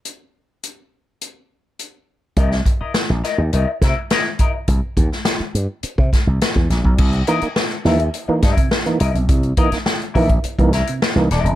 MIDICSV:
0, 0, Header, 1, 7, 480
1, 0, Start_track
1, 0, Tempo, 576923
1, 43, Time_signature, 4, 2, 24, 8
1, 9612, End_track
2, 0, Start_track
2, 0, Title_t, "Clean electric guitar"
2, 0, Program_c, 0, 27
2, 1973, Note_on_c, 0, 64, 74
2, 1980, Note_on_c, 0, 70, 74
2, 1980, Note_on_c, 0, 75, 93
2, 2081, Note_off_c, 0, 75, 0
2, 2090, Note_off_c, 0, 70, 0
2, 2097, Note_off_c, 0, 64, 0
2, 2335, Note_on_c, 0, 75, 60
2, 2339, Note_on_c, 0, 70, 45
2, 2343, Note_on_c, 0, 64, 45
2, 2432, Note_off_c, 0, 75, 0
2, 2433, Note_off_c, 0, 70, 0
2, 2436, Note_off_c, 0, 64, 0
2, 2692, Note_on_c, 0, 64, 66
2, 2693, Note_on_c, 0, 70, 78
2, 2699, Note_on_c, 0, 75, 81
2, 2805, Note_off_c, 0, 75, 0
2, 2816, Note_off_c, 0, 70, 0
2, 2818, Note_off_c, 0, 64, 0
2, 2934, Note_on_c, 0, 64, 79
2, 2937, Note_on_c, 0, 70, 77
2, 2943, Note_on_c, 0, 75, 82
2, 3058, Note_off_c, 0, 75, 0
2, 3059, Note_off_c, 0, 64, 0
2, 3061, Note_off_c, 0, 70, 0
2, 3188, Note_on_c, 0, 64, 69
2, 3194, Note_on_c, 0, 70, 68
2, 3200, Note_on_c, 0, 76, 72
2, 3279, Note_off_c, 0, 64, 0
2, 3282, Note_off_c, 0, 70, 0
2, 3285, Note_off_c, 0, 76, 0
2, 3427, Note_on_c, 0, 64, 75
2, 3431, Note_on_c, 0, 70, 85
2, 3433, Note_on_c, 0, 75, 80
2, 3521, Note_off_c, 0, 75, 0
2, 3530, Note_off_c, 0, 70, 0
2, 3546, Note_off_c, 0, 64, 0
2, 3658, Note_on_c, 0, 64, 56
2, 3664, Note_on_c, 0, 70, 63
2, 3668, Note_on_c, 0, 75, 55
2, 3754, Note_off_c, 0, 64, 0
2, 3757, Note_off_c, 0, 70, 0
2, 3759, Note_off_c, 0, 75, 0
2, 6052, Note_on_c, 0, 64, 88
2, 6060, Note_on_c, 0, 70, 91
2, 6066, Note_on_c, 0, 75, 92
2, 6178, Note_off_c, 0, 64, 0
2, 6182, Note_off_c, 0, 70, 0
2, 6185, Note_off_c, 0, 75, 0
2, 6539, Note_on_c, 0, 64, 72
2, 6544, Note_on_c, 0, 70, 79
2, 6548, Note_on_c, 0, 76, 81
2, 6652, Note_off_c, 0, 70, 0
2, 6658, Note_off_c, 0, 76, 0
2, 6661, Note_off_c, 0, 64, 0
2, 7019, Note_on_c, 0, 64, 82
2, 7020, Note_on_c, 0, 70, 77
2, 7027, Note_on_c, 0, 76, 84
2, 7132, Note_off_c, 0, 70, 0
2, 7136, Note_off_c, 0, 76, 0
2, 7181, Note_off_c, 0, 64, 0
2, 7485, Note_on_c, 0, 64, 68
2, 7491, Note_on_c, 0, 70, 62
2, 7496, Note_on_c, 0, 75, 78
2, 7586, Note_off_c, 0, 64, 0
2, 7589, Note_off_c, 0, 70, 0
2, 7592, Note_off_c, 0, 75, 0
2, 7968, Note_on_c, 0, 64, 79
2, 7973, Note_on_c, 0, 70, 91
2, 7973, Note_on_c, 0, 75, 97
2, 8095, Note_off_c, 0, 64, 0
2, 8097, Note_off_c, 0, 70, 0
2, 8097, Note_off_c, 0, 75, 0
2, 8437, Note_on_c, 0, 64, 83
2, 8441, Note_on_c, 0, 70, 78
2, 8443, Note_on_c, 0, 76, 93
2, 8567, Note_off_c, 0, 76, 0
2, 8568, Note_off_c, 0, 64, 0
2, 8568, Note_off_c, 0, 70, 0
2, 8928, Note_on_c, 0, 64, 70
2, 8933, Note_on_c, 0, 70, 84
2, 8939, Note_on_c, 0, 76, 75
2, 9047, Note_off_c, 0, 76, 0
2, 9049, Note_off_c, 0, 70, 0
2, 9053, Note_off_c, 0, 64, 0
2, 9411, Note_on_c, 0, 64, 82
2, 9415, Note_on_c, 0, 70, 74
2, 9419, Note_on_c, 0, 75, 91
2, 9532, Note_off_c, 0, 75, 0
2, 9536, Note_off_c, 0, 70, 0
2, 9575, Note_off_c, 0, 64, 0
2, 9612, End_track
3, 0, Start_track
3, 0, Title_t, "Tonewheel organ"
3, 0, Program_c, 1, 16
3, 5821, Note_on_c, 1, 48, 54
3, 5922, Note_off_c, 1, 48, 0
3, 6056, Note_on_c, 1, 52, 96
3, 6059, Note_on_c, 1, 58, 82
3, 6062, Note_on_c, 1, 63, 101
3, 6160, Note_off_c, 1, 52, 0
3, 6161, Note_off_c, 1, 58, 0
3, 6162, Note_off_c, 1, 63, 0
3, 6180, Note_on_c, 1, 58, 35
3, 6180, Note_on_c, 1, 63, 39
3, 6224, Note_off_c, 1, 63, 0
3, 6225, Note_off_c, 1, 58, 0
3, 6533, Note_on_c, 1, 52, 100
3, 6536, Note_on_c, 1, 58, 83
3, 6540, Note_on_c, 1, 63, 101
3, 6637, Note_off_c, 1, 52, 0
3, 6639, Note_off_c, 1, 58, 0
3, 6641, Note_off_c, 1, 63, 0
3, 6896, Note_on_c, 1, 52, 77
3, 6898, Note_on_c, 1, 58, 74
3, 6901, Note_on_c, 1, 63, 82
3, 6999, Note_off_c, 1, 52, 0
3, 7000, Note_off_c, 1, 58, 0
3, 7001, Note_off_c, 1, 63, 0
3, 7130, Note_on_c, 1, 48, 55
3, 7235, Note_off_c, 1, 48, 0
3, 7371, Note_on_c, 1, 52, 73
3, 7374, Note_on_c, 1, 58, 61
3, 7377, Note_on_c, 1, 63, 77
3, 7476, Note_off_c, 1, 52, 0
3, 7477, Note_off_c, 1, 58, 0
3, 7479, Note_off_c, 1, 63, 0
3, 7621, Note_on_c, 1, 48, 59
3, 7721, Note_off_c, 1, 48, 0
3, 7733, Note_on_c, 1, 48, 56
3, 7837, Note_off_c, 1, 48, 0
3, 7970, Note_on_c, 1, 52, 95
3, 7975, Note_on_c, 1, 58, 79
3, 7976, Note_on_c, 1, 63, 96
3, 8075, Note_off_c, 1, 52, 0
3, 8077, Note_off_c, 1, 58, 0
3, 8077, Note_off_c, 1, 63, 0
3, 8097, Note_on_c, 1, 58, 40
3, 8099, Note_on_c, 1, 63, 38
3, 8141, Note_off_c, 1, 58, 0
3, 8142, Note_off_c, 1, 63, 0
3, 8458, Note_on_c, 1, 52, 95
3, 8460, Note_on_c, 1, 58, 89
3, 8463, Note_on_c, 1, 63, 107
3, 8558, Note_off_c, 1, 52, 0
3, 8559, Note_off_c, 1, 58, 0
3, 8561, Note_off_c, 1, 63, 0
3, 8819, Note_on_c, 1, 52, 78
3, 8821, Note_on_c, 1, 58, 73
3, 8822, Note_on_c, 1, 63, 93
3, 8919, Note_off_c, 1, 52, 0
3, 8919, Note_off_c, 1, 58, 0
3, 8920, Note_off_c, 1, 63, 0
3, 9061, Note_on_c, 1, 48, 54
3, 9159, Note_off_c, 1, 48, 0
3, 9288, Note_on_c, 1, 52, 75
3, 9290, Note_on_c, 1, 58, 71
3, 9296, Note_on_c, 1, 63, 87
3, 9392, Note_off_c, 1, 52, 0
3, 9394, Note_off_c, 1, 58, 0
3, 9396, Note_off_c, 1, 63, 0
3, 9532, Note_on_c, 1, 48, 58
3, 9612, Note_off_c, 1, 48, 0
3, 9612, End_track
4, 0, Start_track
4, 0, Title_t, "Slap bass"
4, 0, Program_c, 2, 36
4, 1968, Note_on_c, 2, 36, 87
4, 2159, Note_off_c, 2, 36, 0
4, 2577, Note_on_c, 2, 34, 82
4, 2670, Note_off_c, 2, 34, 0
4, 2813, Note_on_c, 2, 39, 88
4, 2908, Note_off_c, 2, 39, 0
4, 2937, Note_on_c, 2, 36, 74
4, 3030, Note_off_c, 2, 36, 0
4, 3173, Note_on_c, 2, 48, 94
4, 3268, Note_off_c, 2, 48, 0
4, 3894, Note_on_c, 2, 36, 97
4, 3989, Note_off_c, 2, 36, 0
4, 4134, Note_on_c, 2, 39, 78
4, 4229, Note_off_c, 2, 39, 0
4, 4614, Note_on_c, 2, 43, 74
4, 4709, Note_off_c, 2, 43, 0
4, 4975, Note_on_c, 2, 48, 96
4, 5070, Note_off_c, 2, 48, 0
4, 5216, Note_on_c, 2, 36, 72
4, 5310, Note_off_c, 2, 36, 0
4, 5457, Note_on_c, 2, 40, 89
4, 5550, Note_off_c, 2, 40, 0
4, 5573, Note_on_c, 2, 34, 86
4, 5668, Note_off_c, 2, 34, 0
4, 5694, Note_on_c, 2, 35, 81
4, 5789, Note_off_c, 2, 35, 0
4, 5809, Note_on_c, 2, 36, 111
4, 6001, Note_off_c, 2, 36, 0
4, 6531, Note_on_c, 2, 39, 86
4, 6721, Note_off_c, 2, 39, 0
4, 7009, Note_on_c, 2, 43, 103
4, 7105, Note_off_c, 2, 43, 0
4, 7491, Note_on_c, 2, 36, 88
4, 7586, Note_off_c, 2, 36, 0
4, 7607, Note_on_c, 2, 35, 86
4, 7703, Note_off_c, 2, 35, 0
4, 7729, Note_on_c, 2, 36, 98
4, 7919, Note_off_c, 2, 36, 0
4, 8448, Note_on_c, 2, 34, 88
4, 8638, Note_off_c, 2, 34, 0
4, 8807, Note_on_c, 2, 36, 84
4, 8997, Note_off_c, 2, 36, 0
4, 9281, Note_on_c, 2, 36, 94
4, 9379, Note_off_c, 2, 36, 0
4, 9405, Note_on_c, 2, 27, 96
4, 9501, Note_off_c, 2, 27, 0
4, 9518, Note_on_c, 2, 28, 88
4, 9612, Note_off_c, 2, 28, 0
4, 9612, End_track
5, 0, Start_track
5, 0, Title_t, "Muted clean electric guitar strokes"
5, 2091, Note_on_c, 9, 29, 38
5, 2175, Note_off_c, 9, 29, 0
5, 2218, Note_on_c, 9, 29, 49
5, 2301, Note_off_c, 9, 29, 0
5, 2449, Note_on_c, 9, 29, 44
5, 2532, Note_off_c, 9, 29, 0
5, 2569, Note_on_c, 9, 29, 33
5, 2652, Note_off_c, 9, 29, 0
5, 2815, Note_on_c, 9, 29, 33
5, 2899, Note_off_c, 9, 29, 0
5, 3068, Note_on_c, 9, 29, 35
5, 3151, Note_off_c, 9, 29, 0
5, 3298, Note_on_c, 9, 29, 43
5, 3381, Note_off_c, 9, 29, 0
5, 3531, Note_on_c, 9, 29, 39
5, 3614, Note_off_c, 9, 29, 0
5, 3775, Note_on_c, 9, 29, 40
5, 3858, Note_off_c, 9, 29, 0
5, 6300, Note_on_c, 9, 29, 35
5, 6384, Note_off_c, 9, 29, 0
5, 6418, Note_on_c, 9, 29, 44
5, 6501, Note_off_c, 9, 29, 0
5, 6661, Note_on_c, 9, 29, 50
5, 6744, Note_off_c, 9, 29, 0
5, 6781, Note_on_c, 9, 29, 35
5, 6864, Note_off_c, 9, 29, 0
5, 6889, Note_on_c, 9, 29, 58
5, 6972, Note_off_c, 9, 29, 0
5, 7139, Note_on_c, 9, 29, 47
5, 7223, Note_off_c, 9, 29, 0
5, 7251, Note_on_c, 9, 29, 44
5, 7334, Note_off_c, 9, 29, 0
5, 7604, Note_on_c, 9, 29, 38
5, 7687, Note_off_c, 9, 29, 0
5, 8201, Note_on_c, 9, 29, 42
5, 8284, Note_off_c, 9, 29, 0
5, 8323, Note_on_c, 9, 29, 37
5, 8406, Note_off_c, 9, 29, 0
5, 8570, Note_on_c, 9, 29, 37
5, 8654, Note_off_c, 9, 29, 0
5, 8686, Note_on_c, 9, 29, 46
5, 8769, Note_off_c, 9, 29, 0
5, 8806, Note_on_c, 9, 29, 46
5, 8889, Note_off_c, 9, 29, 0
5, 9051, Note_on_c, 9, 29, 47
5, 9134, Note_off_c, 9, 29, 0
5, 9173, Note_on_c, 9, 29, 40
5, 9256, Note_off_c, 9, 29, 0
5, 9290, Note_on_c, 9, 29, 52
5, 9373, Note_off_c, 9, 29, 0
5, 9542, Note_on_c, 9, 29, 39
5, 9612, Note_off_c, 9, 29, 0
5, 9612, End_track
6, 0, Start_track
6, 0, Title_t, "Muted slap bass strokes"
6, 2336, Note_on_c, 9, 29, 40
6, 2419, Note_off_c, 9, 29, 0
6, 4493, Note_on_c, 9, 29, 46
6, 4576, Note_off_c, 9, 29, 0
6, 4854, Note_on_c, 9, 29, 38
6, 4937, Note_off_c, 9, 29, 0
6, 6174, Note_on_c, 9, 29, 41
6, 6257, Note_off_c, 9, 29, 0
6, 6892, Note_on_c, 9, 29, 46
6, 6975, Note_off_c, 9, 29, 0
6, 8088, Note_on_c, 9, 29, 45
6, 8171, Note_off_c, 9, 29, 0
6, 8686, Note_on_c, 9, 29, 37
6, 8770, Note_off_c, 9, 29, 0
6, 9612, End_track
7, 0, Start_track
7, 0, Title_t, "Drums"
7, 43, Note_on_c, 9, 42, 54
7, 126, Note_off_c, 9, 42, 0
7, 528, Note_on_c, 9, 42, 52
7, 611, Note_off_c, 9, 42, 0
7, 1010, Note_on_c, 9, 42, 58
7, 1094, Note_off_c, 9, 42, 0
7, 1491, Note_on_c, 9, 42, 51
7, 1574, Note_off_c, 9, 42, 0
7, 1969, Note_on_c, 9, 42, 80
7, 1970, Note_on_c, 9, 36, 107
7, 2052, Note_off_c, 9, 42, 0
7, 2053, Note_off_c, 9, 36, 0
7, 2090, Note_on_c, 9, 38, 33
7, 2173, Note_off_c, 9, 38, 0
7, 2209, Note_on_c, 9, 36, 81
7, 2214, Note_on_c, 9, 42, 74
7, 2292, Note_off_c, 9, 36, 0
7, 2297, Note_off_c, 9, 42, 0
7, 2449, Note_on_c, 9, 38, 98
7, 2451, Note_on_c, 9, 42, 85
7, 2532, Note_off_c, 9, 38, 0
7, 2535, Note_off_c, 9, 42, 0
7, 2690, Note_on_c, 9, 38, 30
7, 2700, Note_on_c, 9, 42, 59
7, 2773, Note_off_c, 9, 38, 0
7, 2783, Note_off_c, 9, 42, 0
7, 2935, Note_on_c, 9, 42, 79
7, 3018, Note_off_c, 9, 42, 0
7, 3176, Note_on_c, 9, 36, 80
7, 3177, Note_on_c, 9, 38, 36
7, 3179, Note_on_c, 9, 42, 67
7, 3259, Note_off_c, 9, 36, 0
7, 3260, Note_off_c, 9, 38, 0
7, 3262, Note_off_c, 9, 42, 0
7, 3414, Note_on_c, 9, 42, 84
7, 3419, Note_on_c, 9, 38, 103
7, 3497, Note_off_c, 9, 42, 0
7, 3502, Note_off_c, 9, 38, 0
7, 3651, Note_on_c, 9, 42, 79
7, 3655, Note_on_c, 9, 36, 85
7, 3735, Note_off_c, 9, 42, 0
7, 3739, Note_off_c, 9, 36, 0
7, 3892, Note_on_c, 9, 42, 86
7, 3894, Note_on_c, 9, 36, 97
7, 3975, Note_off_c, 9, 42, 0
7, 3977, Note_off_c, 9, 36, 0
7, 4133, Note_on_c, 9, 36, 84
7, 4135, Note_on_c, 9, 42, 69
7, 4216, Note_off_c, 9, 36, 0
7, 4218, Note_off_c, 9, 42, 0
7, 4261, Note_on_c, 9, 38, 31
7, 4344, Note_off_c, 9, 38, 0
7, 4368, Note_on_c, 9, 38, 104
7, 4371, Note_on_c, 9, 42, 95
7, 4452, Note_off_c, 9, 38, 0
7, 4454, Note_off_c, 9, 42, 0
7, 4618, Note_on_c, 9, 42, 67
7, 4701, Note_off_c, 9, 42, 0
7, 4850, Note_on_c, 9, 42, 82
7, 4933, Note_off_c, 9, 42, 0
7, 4976, Note_on_c, 9, 36, 84
7, 5059, Note_off_c, 9, 36, 0
7, 5098, Note_on_c, 9, 36, 82
7, 5101, Note_on_c, 9, 38, 35
7, 5103, Note_on_c, 9, 42, 71
7, 5181, Note_off_c, 9, 36, 0
7, 5184, Note_off_c, 9, 38, 0
7, 5186, Note_off_c, 9, 42, 0
7, 5337, Note_on_c, 9, 42, 90
7, 5341, Note_on_c, 9, 38, 108
7, 5420, Note_off_c, 9, 42, 0
7, 5424, Note_off_c, 9, 38, 0
7, 5456, Note_on_c, 9, 36, 82
7, 5539, Note_off_c, 9, 36, 0
7, 5577, Note_on_c, 9, 42, 74
7, 5579, Note_on_c, 9, 38, 38
7, 5660, Note_off_c, 9, 42, 0
7, 5662, Note_off_c, 9, 38, 0
7, 5695, Note_on_c, 9, 36, 75
7, 5778, Note_off_c, 9, 36, 0
7, 5810, Note_on_c, 9, 49, 88
7, 5812, Note_on_c, 9, 36, 114
7, 5893, Note_off_c, 9, 49, 0
7, 5895, Note_off_c, 9, 36, 0
7, 5928, Note_on_c, 9, 42, 34
7, 6011, Note_off_c, 9, 42, 0
7, 6050, Note_on_c, 9, 42, 82
7, 6133, Note_off_c, 9, 42, 0
7, 6169, Note_on_c, 9, 42, 45
7, 6252, Note_off_c, 9, 42, 0
7, 6290, Note_on_c, 9, 38, 102
7, 6373, Note_off_c, 9, 38, 0
7, 6415, Note_on_c, 9, 42, 33
7, 6498, Note_off_c, 9, 42, 0
7, 6525, Note_on_c, 9, 38, 29
7, 6536, Note_on_c, 9, 46, 44
7, 6609, Note_off_c, 9, 38, 0
7, 6619, Note_off_c, 9, 46, 0
7, 6652, Note_on_c, 9, 42, 51
7, 6736, Note_off_c, 9, 42, 0
7, 6770, Note_on_c, 9, 42, 79
7, 6853, Note_off_c, 9, 42, 0
7, 7007, Note_on_c, 9, 38, 37
7, 7009, Note_on_c, 9, 42, 81
7, 7011, Note_on_c, 9, 36, 91
7, 7090, Note_off_c, 9, 38, 0
7, 7092, Note_off_c, 9, 42, 0
7, 7094, Note_off_c, 9, 36, 0
7, 7132, Note_on_c, 9, 36, 87
7, 7134, Note_on_c, 9, 42, 56
7, 7216, Note_off_c, 9, 36, 0
7, 7217, Note_off_c, 9, 42, 0
7, 7249, Note_on_c, 9, 38, 100
7, 7332, Note_off_c, 9, 38, 0
7, 7370, Note_on_c, 9, 42, 34
7, 7453, Note_off_c, 9, 42, 0
7, 7488, Note_on_c, 9, 42, 82
7, 7571, Note_off_c, 9, 42, 0
7, 7615, Note_on_c, 9, 42, 46
7, 7698, Note_off_c, 9, 42, 0
7, 7727, Note_on_c, 9, 42, 80
7, 7729, Note_on_c, 9, 36, 113
7, 7810, Note_off_c, 9, 42, 0
7, 7812, Note_off_c, 9, 36, 0
7, 7847, Note_on_c, 9, 42, 34
7, 7930, Note_off_c, 9, 42, 0
7, 7962, Note_on_c, 9, 42, 77
7, 7965, Note_on_c, 9, 36, 96
7, 8046, Note_off_c, 9, 42, 0
7, 8048, Note_off_c, 9, 36, 0
7, 8085, Note_on_c, 9, 42, 48
7, 8091, Note_on_c, 9, 38, 33
7, 8169, Note_off_c, 9, 42, 0
7, 8174, Note_off_c, 9, 38, 0
7, 8203, Note_on_c, 9, 38, 96
7, 8286, Note_off_c, 9, 38, 0
7, 8333, Note_on_c, 9, 42, 32
7, 8416, Note_off_c, 9, 42, 0
7, 8447, Note_on_c, 9, 36, 79
7, 8449, Note_on_c, 9, 46, 48
7, 8530, Note_off_c, 9, 36, 0
7, 8532, Note_off_c, 9, 46, 0
7, 8564, Note_on_c, 9, 42, 49
7, 8566, Note_on_c, 9, 36, 85
7, 8647, Note_off_c, 9, 42, 0
7, 8649, Note_off_c, 9, 36, 0
7, 8684, Note_on_c, 9, 42, 82
7, 8767, Note_off_c, 9, 42, 0
7, 8808, Note_on_c, 9, 36, 95
7, 8812, Note_on_c, 9, 42, 32
7, 8891, Note_off_c, 9, 36, 0
7, 8895, Note_off_c, 9, 42, 0
7, 8924, Note_on_c, 9, 38, 36
7, 8926, Note_on_c, 9, 42, 80
7, 9007, Note_off_c, 9, 38, 0
7, 9009, Note_off_c, 9, 42, 0
7, 9047, Note_on_c, 9, 42, 58
7, 9130, Note_off_c, 9, 42, 0
7, 9171, Note_on_c, 9, 38, 118
7, 9254, Note_off_c, 9, 38, 0
7, 9408, Note_on_c, 9, 42, 73
7, 9410, Note_on_c, 9, 38, 40
7, 9491, Note_off_c, 9, 42, 0
7, 9493, Note_off_c, 9, 38, 0
7, 9532, Note_on_c, 9, 42, 45
7, 9612, Note_off_c, 9, 42, 0
7, 9612, End_track
0, 0, End_of_file